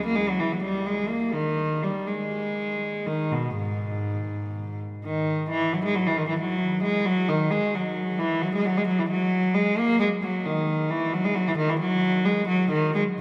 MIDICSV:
0, 0, Header, 1, 2, 480
1, 0, Start_track
1, 0, Tempo, 467290
1, 1614, Tempo, 496689
1, 2092, Time_signature, 12, 3, 24, 8
1, 4974, Tempo, 450113
1, 11214, Tempo, 459770
1, 13625, End_track
2, 0, Start_track
2, 0, Title_t, "Cello"
2, 0, Program_c, 0, 42
2, 57, Note_on_c, 0, 58, 57
2, 158, Note_on_c, 0, 56, 60
2, 171, Note_off_c, 0, 58, 0
2, 284, Note_off_c, 0, 56, 0
2, 302, Note_on_c, 0, 54, 58
2, 404, Note_on_c, 0, 52, 52
2, 416, Note_off_c, 0, 54, 0
2, 527, Note_off_c, 0, 52, 0
2, 535, Note_on_c, 0, 54, 51
2, 641, Note_on_c, 0, 55, 56
2, 652, Note_off_c, 0, 54, 0
2, 877, Note_off_c, 0, 55, 0
2, 883, Note_on_c, 0, 56, 55
2, 1114, Note_on_c, 0, 58, 51
2, 1123, Note_off_c, 0, 56, 0
2, 1361, Note_off_c, 0, 58, 0
2, 1365, Note_on_c, 0, 51, 58
2, 1850, Note_off_c, 0, 51, 0
2, 1859, Note_on_c, 0, 55, 48
2, 2093, Note_on_c, 0, 56, 45
2, 2096, Note_off_c, 0, 55, 0
2, 3057, Note_on_c, 0, 51, 51
2, 3063, Note_off_c, 0, 56, 0
2, 3301, Note_on_c, 0, 47, 45
2, 3304, Note_off_c, 0, 51, 0
2, 3542, Note_on_c, 0, 44, 49
2, 3547, Note_off_c, 0, 47, 0
2, 4712, Note_off_c, 0, 44, 0
2, 4970, Note_on_c, 0, 51, 48
2, 5421, Note_off_c, 0, 51, 0
2, 5455, Note_on_c, 0, 52, 59
2, 5690, Note_off_c, 0, 52, 0
2, 5700, Note_on_c, 0, 54, 54
2, 5818, Note_off_c, 0, 54, 0
2, 5822, Note_on_c, 0, 56, 56
2, 5936, Note_on_c, 0, 54, 57
2, 5937, Note_off_c, 0, 56, 0
2, 6056, Note_off_c, 0, 54, 0
2, 6062, Note_on_c, 0, 52, 55
2, 6170, Note_on_c, 0, 51, 55
2, 6178, Note_off_c, 0, 52, 0
2, 6291, Note_off_c, 0, 51, 0
2, 6292, Note_on_c, 0, 52, 47
2, 6407, Note_on_c, 0, 54, 60
2, 6409, Note_off_c, 0, 52, 0
2, 6877, Note_on_c, 0, 56, 60
2, 6879, Note_off_c, 0, 54, 0
2, 7113, Note_on_c, 0, 54, 67
2, 7119, Note_off_c, 0, 56, 0
2, 7359, Note_off_c, 0, 54, 0
2, 7362, Note_on_c, 0, 51, 59
2, 7602, Note_on_c, 0, 56, 55
2, 7603, Note_off_c, 0, 51, 0
2, 7843, Note_off_c, 0, 56, 0
2, 7849, Note_on_c, 0, 54, 46
2, 8320, Note_on_c, 0, 52, 57
2, 8322, Note_off_c, 0, 54, 0
2, 8561, Note_off_c, 0, 52, 0
2, 8565, Note_on_c, 0, 54, 59
2, 8684, Note_off_c, 0, 54, 0
2, 8702, Note_on_c, 0, 56, 53
2, 8811, Note_off_c, 0, 56, 0
2, 8821, Note_on_c, 0, 54, 62
2, 8933, Note_off_c, 0, 54, 0
2, 8946, Note_on_c, 0, 56, 60
2, 9046, Note_on_c, 0, 54, 55
2, 9055, Note_off_c, 0, 56, 0
2, 9163, Note_off_c, 0, 54, 0
2, 9176, Note_on_c, 0, 52, 47
2, 9282, Note_on_c, 0, 54, 67
2, 9292, Note_off_c, 0, 52, 0
2, 9762, Note_off_c, 0, 54, 0
2, 9766, Note_on_c, 0, 56, 64
2, 10011, Note_off_c, 0, 56, 0
2, 10012, Note_on_c, 0, 58, 73
2, 10253, Note_on_c, 0, 56, 57
2, 10255, Note_off_c, 0, 58, 0
2, 10339, Note_off_c, 0, 56, 0
2, 10491, Note_on_c, 0, 54, 52
2, 10728, Note_off_c, 0, 54, 0
2, 10738, Note_on_c, 0, 51, 54
2, 11212, Note_off_c, 0, 51, 0
2, 11212, Note_on_c, 0, 52, 60
2, 11449, Note_off_c, 0, 52, 0
2, 11453, Note_on_c, 0, 54, 62
2, 11571, Note_off_c, 0, 54, 0
2, 11578, Note_on_c, 0, 56, 63
2, 11681, Note_on_c, 0, 54, 61
2, 11693, Note_off_c, 0, 56, 0
2, 11804, Note_off_c, 0, 54, 0
2, 11817, Note_on_c, 0, 52, 62
2, 11915, Note_on_c, 0, 51, 62
2, 11932, Note_off_c, 0, 52, 0
2, 12038, Note_off_c, 0, 51, 0
2, 12041, Note_on_c, 0, 52, 51
2, 12152, Note_on_c, 0, 54, 70
2, 12163, Note_off_c, 0, 52, 0
2, 12617, Note_off_c, 0, 54, 0
2, 12627, Note_on_c, 0, 56, 60
2, 12865, Note_off_c, 0, 56, 0
2, 12865, Note_on_c, 0, 54, 69
2, 13103, Note_off_c, 0, 54, 0
2, 13105, Note_on_c, 0, 51, 59
2, 13351, Note_off_c, 0, 51, 0
2, 13352, Note_on_c, 0, 56, 57
2, 13435, Note_off_c, 0, 56, 0
2, 13625, End_track
0, 0, End_of_file